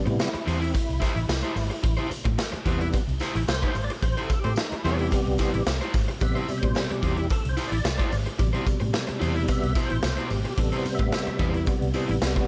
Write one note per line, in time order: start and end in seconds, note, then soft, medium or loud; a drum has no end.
0.00 0.29 C3 medium
0.00 0.29 G3 medium
0.00 0.30 B3 medium
0.06 0.18 A2 medium
0.06 0.48 E4 loud
0.06 muted overdriven electric guitar stroke soft
0.06 closed hi-hat soft
0.19 muted overdriven electric guitar stroke soft
0.19 snare medium
0.19 tambourine medium
0.34 muted overdriven electric guitar stroke soft
0.34 muted fingered electric bass stroke soft
0.34 closed hi-hat medium
0.46 0.71 E2 medium
0.46 0.75 C4 medium
0.46 0.68 E4 medium
0.46 0.60 G4 medium
0.46 0.59 C5 medium
0.46 closed hi-hat medium
0.46 tambourine soft
0.61 muted overdriven electric guitar stroke soft
0.61 closed hi-hat soft
0.74 2.07 E4 medium
0.74 muted overdriven electric guitar stroke soft
0.74 kick loud
0.74 closed hi-hat medium
0.74 tambourine medium
0.89 1.00 C2 medium
0.89 closed hi-hat medium
1.00 1.18 E4 medium
1.00 1.15 G4 medium
1.00 1.14 C5 medium
1.00 kick medium
1.00 snare soft
1.00 closed hi-hat medium
1.00 tambourine medium
1.15 1.27 A1 medium
1.15 muted overdriven electric guitar stroke soft
1.15 closed hi-hat medium
1.29 1.42 C2 medium
1.29 muted overdriven electric guitar stroke soft
1.29 snare loud
1.29 tambourine loud
1.43 1.55 E4 medium
1.43 1.55 G4 medium
1.43 1.56 C5 medium
1.43 closed hi-hat medium
1.56 1.69 G#1 medium
1.56 muted overdriven electric guitar stroke soft
1.56 open hi-hat medium
1.56 tambourine medium
1.70 muted overdriven electric guitar stroke soft
1.70 closed hi-hat medium
1.83 1.97 A1 medium
1.83 muted overdriven electric guitar stroke soft
1.83 kick loud
1.83 closed hi-hat medium
1.83 tambourine soft
1.97 2.09 E4 medium
1.97 2.10 G4 medium
1.97 2.10 C5 medium
1.97 closed hi-hat soft
2.10 muted overdriven electric guitar stroke soft
2.10 muted fingered electric bass stroke medium
2.10 closed hi-hat medium
2.10 tambourine medium
2.25 2.37 A2 loud
2.25 muted overdriven electric guitar stroke soft
2.25 kick loud
2.25 closed hi-hat soft
2.38 muted overdriven electric guitar stroke soft
2.38 snare loud
2.38 tambourine medium
2.52 muted overdriven electric guitar stroke soft
2.52 muted fingered electric bass stroke medium
2.52 closed hi-hat medium
2.65 2.90 E2 medium
2.65 3.03 C3 medium
2.65 3.03 G3 medium
2.65 3.03 B3 medium
2.65 2.87 E4 medium
2.65 2.81 G4 medium
2.65 2.80 C5 medium
2.65 kick loud
2.65 closed hi-hat medium
2.65 tambourine soft
2.81 muted overdriven electric guitar stroke soft
2.81 closed hi-hat medium
2.93 muted overdriven electric guitar stroke soft
2.93 kick loud
2.93 closed hi-hat medium
2.93 tambourine medium
3.07 3.19 C2 medium
3.07 closed hi-hat soft
3.20 3.38 E4 medium
3.20 3.35 G4 medium
3.20 3.34 C5 medium
3.20 snare soft
3.20 closed hi-hat medium
3.20 tambourine medium
3.35 3.47 A1 medium
3.35 muted overdriven electric guitar stroke soft
3.35 closed hi-hat medium
3.48 3.61 C2 loud
3.48 3.64 C5 medium
3.48 muted overdriven electric guitar stroke soft
3.48 snare loud
3.48 tambourine loud
3.62 3.74 E4 medium
3.62 3.75 G4 medium
3.62 3.75 C5 medium
3.62 3.85 C5 medium
3.62 kick medium
3.62 closed hi-hat medium
3.75 3.88 G#1 medium
3.75 muted overdriven electric guitar stroke soft
3.75 open hi-hat medium
3.75 tambourine medium
3.84 3.92 D5 loud
3.90 muted overdriven electric guitar stroke soft
3.90 closed hi-hat medium
4.02 4.15 A1 loud
4.02 4.21 C5 loud
4.02 muted overdriven electric guitar stroke soft
4.02 kick loud
4.02 closed hi-hat medium
4.17 4.29 E4 medium
4.17 4.29 G4 medium
4.17 4.40 A4 medium
4.17 4.30 C5 medium
4.17 closed hi-hat medium
4.30 muted fingered electric bass stroke medium
4.30 muted overdriven electric guitar stroke soft
4.30 kick loud
4.30 closed hi-hat medium
4.30 tambourine medium
4.39 4.58 G4 medium
4.44 4.56 A2 medium
4.44 4.52 A3 medium
4.44 4.53 C4 medium
4.44 4.52 G4 medium
4.44 4.53 C5 medium
4.44 muted overdriven electric guitar stroke medium
4.44 closed hi-hat soft
4.56 4.76 D#4 medium
4.56 muted overdriven electric guitar stroke soft
4.56 snare loud
4.56 tambourine medium
4.72 4.94 E4 medium
4.72 muted fingered electric bass stroke soft
4.72 muted overdriven electric guitar stroke soft
4.72 closed hi-hat medium
4.84 5.09 E2 loud
4.84 5.62 C3 medium
4.84 5.63 G3 medium
4.84 4.96 A3 loud
4.84 5.63 B3 medium
4.84 4.97 C4 loud
4.84 5.06 E4 medium
4.84 4.97 G4 medium
4.84 5.00 G4 medium
4.84 4.97 C5 loud
4.84 4.99 C5 medium
4.84 closed hi-hat medium
4.84 tambourine soft
4.94 5.72 G4 loud
4.99 muted overdriven electric guitar stroke soft
4.99 closed hi-hat medium
5.11 muted overdriven electric guitar stroke soft
5.11 kick medium
5.11 closed hi-hat medium
5.11 tambourine medium
5.27 5.38 C2 medium
5.27 closed hi-hat soft
5.38 5.56 E4 medium
5.38 5.53 G4 medium
5.38 5.53 C5 medium
5.38 kick medium
5.38 snare soft
5.38 closed hi-hat medium
5.38 tambourine medium
5.54 5.65 A1 medium
5.54 muted overdriven electric guitar stroke soft
5.54 closed hi-hat soft
5.66 5.79 C2 medium
5.66 muted overdriven electric guitar stroke soft
5.66 snare loud
5.66 tambourine loud
5.81 5.93 E4 medium
5.81 5.94 G4 medium
5.81 5.94 C5 medium
5.81 closed hi-hat medium
5.94 6.07 G#1 medium
5.94 muted overdriven electric guitar stroke soft
5.94 kick loud
5.94 open hi-hat medium
5.94 tambourine medium
6.08 muted overdriven electric guitar stroke soft
6.08 closed hi-hat medium
6.20 6.34 A1 loud
6.20 6.46 C3 soft
6.20 6.46 G3 soft
6.20 6.46 B3 medium
6.20 6.59 E5 loud
6.20 muted overdriven electric guitar stroke soft
6.20 kick loud
6.20 closed hi-hat medium
6.20 tambourine soft
6.35 6.47 E4 medium
6.35 6.48 G4 medium
6.35 6.49 C5 medium
6.35 closed hi-hat medium
6.48 7.27 B2 medium
6.48 7.26 C3 medium
6.48 7.27 G3 soft
6.48 muted overdriven electric guitar stroke soft
6.48 muted fingered electric bass stroke medium
6.48 closed hi-hat medium
6.48 tambourine medium
6.58 6.91 C5 loud
6.63 6.74 A2 medium
6.63 muted overdriven electric guitar stroke medium
6.63 kick loud
6.63 closed hi-hat soft
6.75 muted overdriven electric guitar stroke soft
6.75 snare loud
6.75 tambourine medium
6.90 7.28 G4 medium
6.90 muted fingered electric bass stroke soft
6.90 muted overdriven electric guitar stroke medium
6.90 closed hi-hat medium
7.02 7.27 E2 medium
7.02 7.24 E4 medium
7.02 7.17 G4 medium
7.02 7.17 C5 medium
7.02 kick medium
7.02 closed hi-hat medium
7.17 muted overdriven electric guitar stroke soft
7.17 closed hi-hat soft
7.30 7.49 A4 medium
7.30 muted overdriven electric guitar stroke soft
7.30 kick loud
7.30 closed hi-hat medium
7.30 tambourine soft
7.45 7.56 C2 medium
7.45 closed hi-hat medium
7.49 7.68 C5 medium
7.57 7.75 E4 medium
7.57 7.72 G4 medium
7.57 7.71 C5 medium
7.57 closed hi-hat medium
7.57 tambourine medium
7.67 8.18 D5 medium
7.72 7.83 A1 medium
7.72 muted overdriven electric guitar stroke soft
7.72 closed hi-hat medium
7.84 7.98 C2 loud
7.84 muted overdriven electric guitar stroke medium
7.84 snare loud
7.84 tambourine loud
7.98 8.10 E4 medium
7.98 8.11 G4 medium
7.98 8.12 C5 medium
7.98 kick medium
7.98 closed hi-hat medium
8.12 8.25 G#1 medium
8.12 muted overdriven electric guitar stroke soft
8.12 open hi-hat medium
8.12 tambourine medium
8.26 muted overdriven electric guitar stroke soft
8.26 closed hi-hat medium
8.39 8.52 A1 medium
8.39 10.54 B2 medium
8.39 9.47 C3 medium
8.39 9.48 G3 medium
8.39 muted overdriven electric guitar stroke soft
8.39 kick loud
8.39 closed hi-hat medium
8.39 tambourine soft
8.53 8.65 E4 medium
8.53 8.66 G4 medium
8.53 8.66 C5 medium
8.53 closed hi-hat medium
8.66 muted overdriven electric guitar stroke soft
8.66 muted fingered electric bass stroke medium
8.66 kick medium
8.66 closed hi-hat medium
8.66 tambourine medium
8.80 8.93 A2 medium
8.80 muted overdriven electric guitar stroke medium
8.80 closed hi-hat soft
8.93 muted overdriven electric guitar stroke soft
8.93 snare loud
8.93 tambourine medium
9.07 muted overdriven electric guitar stroke soft
9.07 muted fingered electric bass stroke soft
9.07 closed hi-hat medium
9.19 9.46 E2 medium
9.19 9.42 E4 medium
9.19 9.35 G4 medium
9.19 9.33 C5 medium
9.19 closed hi-hat medium
9.19 tambourine soft
9.35 muted overdriven electric guitar stroke soft
9.35 closed hi-hat soft
9.48 9.73 C3 soft
9.48 9.73 G3 soft
9.48 9.73 B3 medium
9.48 9.83 E5 loud
9.48 muted overdriven electric guitar stroke soft
9.48 kick loud
9.48 closed hi-hat medium
9.48 tambourine medium
9.63 9.75 C2 medium
9.63 closed hi-hat medium
9.75 9.93 E4 medium
9.75 9.90 G4 medium
9.75 9.89 C5 medium
9.75 kick medium
9.75 snare soft
9.75 closed hi-hat medium
9.75 tambourine medium
9.86 10.23 C5 medium
9.90 10.02 A1 medium
9.90 muted overdriven electric guitar stroke soft
9.90 closed hi-hat soft
10.03 10.16 C2 loud
10.03 muted overdriven electric guitar stroke soft
10.03 snare loud
10.03 tambourine loud
10.17 10.29 E4 medium
10.17 10.30 G4 medium
10.17 10.30 C5 medium
10.17 closed hi-hat medium
10.22 10.59 G4 medium
10.30 10.43 G#1 medium
10.30 muted overdriven electric guitar stroke soft
10.30 open hi-hat medium
10.30 tambourine medium
10.45 muted overdriven electric guitar stroke soft
10.45 closed hi-hat medium
10.57 10.71 A1 loud
10.57 12.47 C3 medium
10.57 12.47 G3 medium
10.57 12.47 B3 medium
10.57 10.77 A4 loud
10.57 muted overdriven electric guitar stroke soft
10.57 kick medium
10.57 closed hi-hat medium
10.72 10.84 E4 medium
10.72 10.85 G4 medium
10.72 10.85 C5 medium
10.72 closed hi-hat medium
10.77 10.95 C5 medium
10.85 muted fingered electric bass stroke soft
10.85 muted overdriven electric guitar stroke soft
10.85 closed hi-hat medium
10.85 tambourine medium
10.95 11.45 E5 medium
10.99 11.11 A2 medium
10.99 muted overdriven electric guitar stroke soft
10.99 kick loud
10.99 closed hi-hat soft
11.12 muted overdriven electric guitar stroke soft
11.12 snare loud
11.12 tambourine medium
11.27 muted fingered electric bass stroke medium
11.27 muted overdriven electric guitar stroke soft
11.27 closed hi-hat medium
11.39 11.64 E2 medium
11.39 11.61 E4 medium
11.39 11.54 G4 medium
11.39 11.53 C5 loud
11.39 kick loud
11.39 closed hi-hat medium
11.39 tambourine soft
11.54 muted overdriven electric guitar stroke soft
11.54 closed hi-hat medium
11.66 muted overdriven electric guitar stroke soft
11.66 kick loud
11.66 closed hi-hat medium
11.66 tambourine medium
11.82 11.93 C2 medium
11.82 closed hi-hat medium
11.94 12.11 E4 medium
11.94 12.09 G4 medium
11.94 12.08 C5 medium
11.94 closed hi-hat medium
11.94 tambourine medium
12.09 12.20 A1 loud
12.09 muted overdriven electric guitar stroke soft
12.09 closed hi-hat soft
12.22 12.35 C2 loud
12.22 muted overdriven electric guitar stroke medium
12.22 snare loud
12.22 tambourine loud
12.36 muted overdriven electric guitar stroke soft
12.36 kick medium
12.36 closed hi-hat medium